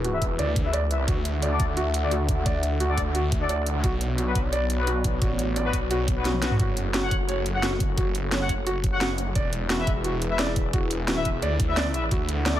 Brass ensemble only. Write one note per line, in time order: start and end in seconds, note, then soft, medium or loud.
0.13 0.23 E4 medium
0.13 0.23 B4 medium
0.13 0.23 E5 loud
0.65 0.75 E4 medium
0.65 0.75 B4 medium
0.65 0.75 E5 loud
0.91 1.01 E4 medium
0.91 1.01 B4 medium
0.91 1.01 E5 medium
1.51 1.61 D4 loud
1.51 1.61 A4 medium
1.51 1.61 D5 loud
2.03 2.13 D4 medium
2.03 2.13 A4 medium
2.03 2.13 D5 loud
2.89 2.99 D4 loud
2.89 2.99 A4 medium
2.89 2.99 D5 loud
3.41 3.50 D4 loud
3.41 3.50 A4 medium
3.41 3.50 D5 loud
4.27 4.37 B3 medium
4.27 4.37 F#4 medium
4.27 4.37 B4 loud
4.79 4.88 B3 medium
4.79 4.88 F#4 medium
4.79 4.88 B4 loud
5.65 5.75 B3 medium
5.65 5.75 F#4 medium
5.65 5.75 B4 loud
6.16 6.26 B3 medium
6.16 6.26 F#4 medium
6.16 6.26 B4 medium
6.42 6.52 B3 medium
6.42 6.52 F#4 medium
6.42 6.52 B4 medium
7.03 7.13 F#4 loud
7.03 7.13 C#5 medium
7.03 7.13 F#5 loud
7.54 7.64 F#4 medium
7.54 7.64 C#5 medium
7.54 7.64 F#5 loud
8.41 8.50 F#4 loud
8.41 8.50 C#5 medium
8.41 8.50 F#5 loud
8.92 9.02 F#4 medium
8.92 9.02 C#5 medium
8.92 9.02 F#5 loud
9.79 9.88 E4 medium
9.79 9.88 B4 medium
9.79 9.88 E5 loud
10.30 10.40 E4 medium
10.30 10.40 B4 medium
10.30 10.40 E5 loud
11.17 11.26 E4 loud
11.17 11.26 B4 medium
11.17 11.26 E5 loud
11.68 11.78 E4 medium
11.68 11.78 B4 medium
11.68 11.78 E5 loud
11.94 12.04 E4 medium
11.94 12.04 B4 medium
11.94 12.04 E5 medium
12.54 12.60 D4 loud
12.54 12.60 A4 medium
12.54 12.60 D5 loud